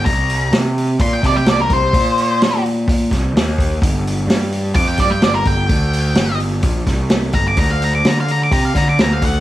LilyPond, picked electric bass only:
\new Staff \with { instrumentName = "Picked electric bass" } { \clef bass \time 4/4 \key c \major \tempo 4 = 128 c,4 c4 bes,8 c8 c,8 c,8 | bes,2~ bes,8 c,8 ees,4 | g,,4 g,4 f,8 g,8 g,,8 g,,8 | d,4 g,,4 bes,,8 c,4 g,,8 |
d,4 d4 c8 d8 d,8 d,8 | }